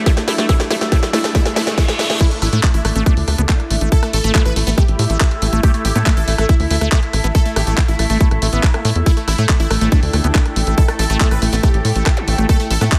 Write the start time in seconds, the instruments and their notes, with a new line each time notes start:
Already playing: synth drone A3 D4, analog synth pad E4 A4 E5, riser
0.06 acid bass A3, wobble bass C4, supersaw synth E4, kick, snare, closed hi-hat
0.17 supersaw synth A3, snare, closed hi-hat
0.28 acid bass A3, supersaw synth E4, snare, open hi-hat
0.38 acid bass A3, supersaw synth A3, snare, closed hi-hat
0.49 acid bass A3, wobble bass C4, supersaw synth E4, kick, snare, closed hi-hat
0.60 supersaw synth A3, snare, closed hi-hat
0.71 acid bass A3, wobble bass C4, supersaw synth E4, snare, open hi-hat
0.81 supersaw synth A3, snare, closed hi-hat
0.92 acid bass A3, wobble bass C4, supersaw synth E4, kick, snare, closed hi-hat
1.03 supersaw synth A3, snare, closed hi-hat
1.13 acid bass A3, wobble bass C4, supersaw synth E4, snare, open hi-hat
1.24 supersaw synth A3, snare, open hi-hat
1.35 acid bass A3, wobble bass C4, supersaw synth E4, kick, snare, closed hi-hat, reverse cymbal
1.46 supersaw synth A3, snare, closed hi-hat
1.56 acid bass A3, wobble bass C4, supersaw synth E4, snare, open hi-hat
1.67 supersaw synth A3, snare, closed hi-hat
1.78 acid bass A3, wobble bass C4, supersaw synth E4, kick, snare, closed hi-hat
1.88 supersaw synth A3, snare, closed hi-hat
1.99 acid bass A3, wobble bass C4, supersaw synth E4, snare, open hi-hat
2.10 supersaw synth A3, snare, closed hi-hat
2.20 synth drone A3 E4, acid bass A3, analog synth pad E4, supersaw synth E4, kick, closed hi-hat, crash
2.31 supersaw synth A3, closed hi-hat
2.42 analog synth bass A1, acid bass A3, supersaw synth E4, cross-stick, open hi-hat
2.49 analog synth bass A2, acid bass A3, supersaw synth A3, analog synth pad A4 E5, closed hi-hat
2.63 supersaw synth A3, acid bass E4, kick, clap, closed hi-hat
2.74 analog synth bass A1, supersaw synth E4, closed hi-hat
2.85 analog synth bass A1, acid bass A3, supersaw synth A3, cross-stick, open hi-hat
2.96 analog synth bass A1, acid bass A3, supersaw synth A3, wobble bass C4, closed hi-hat
3.06 acid bass A3, wobble bass C4, supersaw synth D4, kick, closed hi-hat
3.17 analog synth bass D2, open hi-hat
3.28 analog synth bass D2, wobble bass A3, acid bass A3, cross-stick, open hi-hat
3.38 analog synth bass D2, wobble bass A3, acid bass B3, closed hi-hat
3.49 acid bass A3, kick, clap, closed hi-hat
3.60 cross-stick, closed hi-hat
3.71 analog synth bass A1, acid bass A3, open hi-hat
3.81 analog synth bass A1, acid bass A3, closed hi-hat
3.92 acid bass E4, supersaw synth A4, kick, closed hi-hat
4.03 supersaw synth A3, cross-stick, closed hi-hat
4.13 analog synth bass A1, acid bass A3, supersaw synth A4, open hi-hat
4.24 analog synth bass A1, wobble bass E3, supersaw synth A3, acid bass A3, closed hi-hat
4.35 acid bass A3, supersaw synth A3, kick, clap, closed hi-hat
4.46 analog synth bass A1, supersaw synth B4, cross-stick, closed hi-hat
4.56 analog synth bass A1, acid bass A3, supersaw synth A3, open hi-hat
4.67 analog synth bass A1, wobble bass G3, supersaw synth A3, acid bass B3, open hi-hat
4.78 acid bass A3, supersaw synth G4, kick, cross-stick, closed hi-hat
4.88 analog synth bass A1, closed hi-hat
4.99 analog synth bass A2, acid bass A3, open hi-hat
5.10 analog synth bass A1, acid bass A3, closed hi-hat
5.21 acid bass E4, kick, cross-stick, clap, closed hi-hat
5.31 closed hi-hat
5.42 analog synth bass A1, acid bass A3, open hi-hat
5.53 analog synth bass A1, acid bass A3, closed hi-hat
5.63 acid bass A3, supersaw synth G4, kick, cross-stick, closed hi-hat
5.74 supersaw synth A3, closed hi-hat
5.85 analog synth bass A1, acid bass A3, supersaw synth G4, open hi-hat
5.96 analog synth bass A2, supersaw synth A3, acid bass B3, cross-stick, closed hi-hat
6.06 acid bass A3, supersaw synth A3, kick, clap, closed hi-hat
6.17 analog synth bass A1, supersaw synth A4, closed hi-hat
6.28 analog synth bass A1, acid bass A3, supersaw synth A3, open hi-hat
6.38 analog synth bass A1, supersaw synth A3, acid bass A3, cross-stick, closed hi-hat
6.49 acid bass E4, supersaw synth E4, kick, closed hi-hat
6.60 analog synth bass D2, open hi-hat
6.71 analog synth bass D2, acid bass A3, open hi-hat
6.81 analog synth bass D2, acid bass A3, cross-stick, closed hi-hat
6.92 acid bass A3, kick, clap, closed hi-hat
7.03 closed hi-hat
7.13 analog synth bass A1, acid bass A3, cross-stick, open hi-hat
7.24 analog synth bass A1, acid bass B3, closed hi-hat
7.35 acid bass A3, supersaw synth A4, kick, closed hi-hat
7.46 supersaw synth A3, closed hi-hat
7.56 analog synth bass A1, acid bass A3, supersaw synth G4, cross-stick, open hi-hat
7.67 analog synth bass A1, supersaw synth A3, acid bass A3, closed hi-hat
7.78 supersaw synth A3, acid bass E4, kick, clap, closed hi-hat
7.88 analog synth bass A1, supersaw synth E4, closed hi-hat
7.99 analog synth bass A1, supersaw synth A3, acid bass A3, cross-stick, open hi-hat
8.10 analog synth bass A1, supersaw synth A3, acid bass A3, open hi-hat
8.21 acid bass A3, supersaw synth E4, kick, closed hi-hat
8.31 analog synth bass A1, cross-stick, closed hi-hat
8.42 analog synth bass A1, acid bass A3, open hi-hat
8.53 analog synth bass A1, acid bass B3, closed hi-hat
8.63 acid bass E4, kick, clap, closed hi-hat
8.74 acid bass A3, cross-stick, closed hi-hat
8.85 analog synth bass A2, acid bass A3, open hi-hat
8.96 analog synth bass E2, closed hi-hat
9.06 acid bass A3, supersaw synth E4, synth drone A4, kick, closed hi-hat
9.17 supersaw synth A3, closed hi-hat
9.28 analog synth bass A1, acid bass A3, supersaw synth E4, cross-stick, open hi-hat
9.36 analog synth bass A2, supersaw synth A3, acid bass A3, analog synth pad G5, closed hi-hat
9.49 supersaw synth A3, acid bass E4, kick, clap, closed hi-hat
9.60 analog synth bass A1, supersaw synth E4, closed hi-hat
9.71 analog synth bass A1, supersaw synth A3, acid bass A3, cross-stick, open hi-hat
9.81 analog synth bass A1, supersaw synth A3, acid bass A3, wobble bass C4, closed hi-hat
9.92 acid bass A3, wobble bass C4, supersaw synth D4, kick, closed hi-hat
10.03 analog synth bass D2, open hi-hat
10.13 analog synth bass D2, wobble bass A3, acid bass A3, cross-stick, open hi-hat
10.24 analog synth bass D2, wobble bass A3, acid bass B3, closed hi-hat
10.35 acid bass A3, kick, clap, closed hi-hat
10.46 cross-stick, closed hi-hat
10.56 analog synth bass A1, acid bass A3, open hi-hat
10.67 analog synth bass A1, acid bass A3, closed hi-hat
10.78 wobble bass D4, acid bass E4, supersaw synth A4, kick, closed hi-hat
10.88 supersaw synth A3, wobble bass D4, cross-stick, closed hi-hat
10.99 analog synth bass A1, acid bass A3, supersaw synth A4, open hi-hat
11.10 analog synth bass A1, supersaw synth A3, acid bass A3, closed hi-hat
11.21 supersaw synth A3, acid bass A3, wobble bass C4, kick, clap, closed hi-hat
11.31 analog synth bass A1, wobble bass C4, supersaw synth B4, cross-stick, closed hi-hat
11.42 analog synth bass A1, supersaw synth A3, acid bass A3, open hi-hat
11.53 analog synth bass A1, supersaw synth A3, acid bass B3, open hi-hat
11.63 acid bass A3, wobble bass C4, supersaw synth G4, kick, cross-stick, closed hi-hat
11.74 analog synth bass A1, wobble bass C4, closed hi-hat
11.85 analog synth bass A2, acid bass A3, open hi-hat
11.96 analog synth bass A1, acid bass A3, closed hi-hat
12.06 acid bass E4, kick, cross-stick, clap, closed hi-hat
12.17 closed hi-hat, zap
12.28 analog synth bass A1, acid bass A3, open hi-hat
12.38 analog synth bass A1, acid bass A3, closed hi-hat
12.49 supersaw synth A4, kick, cross-stick, closed hi-hat
12.60 supersaw synth A3, closed hi-hat
12.71 analog synth bass A1, acid bass A3, supersaw synth A4, open hi-hat
12.81 analog synth bass A2, supersaw synth A3, acid bass B3, cross-stick, closed hi-hat
12.92 supersaw synth A3, acid bass A3, kick, clap, closed hi-hat